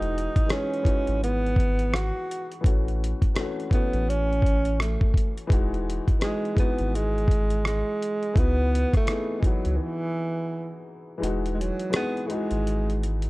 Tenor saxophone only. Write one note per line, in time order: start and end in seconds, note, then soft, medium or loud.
0.00 0.53 D#4 medium
0.52 1.23 C#4 medium
1.24 1.97 B3 loud
1.95 2.52 F#4 medium
3.74 4.10 B3 medium
4.09 4.80 C#4 loud
4.81 5.33 A3 medium
6.24 6.56 G#3 medium
6.60 6.97 B3 medium
6.95 7.66 G#3 loud
7.67 8.40 G#3 loud
8.39 8.95 B3 loud
8.97 9.42 A3 loud
9.40 9.48 G#3 medium
9.46 9.78 F#3 medium
9.76 9.84 D#3 medium
9.82 10.88 E3 loud
11.54 11.62 G#3 medium
11.60 11.94 F#3 medium
11.96 12.28 B3 loud
12.26 12.33 A3 medium
12.31 13.01 G#3 loud